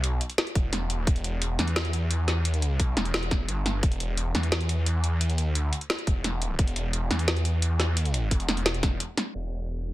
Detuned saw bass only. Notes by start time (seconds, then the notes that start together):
Already playing: D2
0.04 C2
0.55 E1
0.73 E1
1.07 E1
1.59 E2
2.58 D2
2.80 C2
2.97 E1
3.49 G1
3.83 E1
4.35 E2
5.31 D#2
5.58 D2
6.07 E1
6.24 E1
6.59 E1
7.11 E2
8.49 E1
9.35 E1